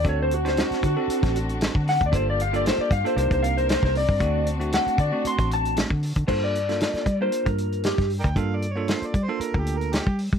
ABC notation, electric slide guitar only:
X:1
M:4/4
L:1/16
Q:"Swing 16ths" 1/4=115
K:Gm
V:1 name="Electric slide guitar"
^c =c ^F c F2 F4 z4 ^f d | c d f d c d f c c c f c c c d2- | d2 z2 ^f2 d2 c'2 a2 z4 | c d6 c2 B3 G2 z2 |
z16 |]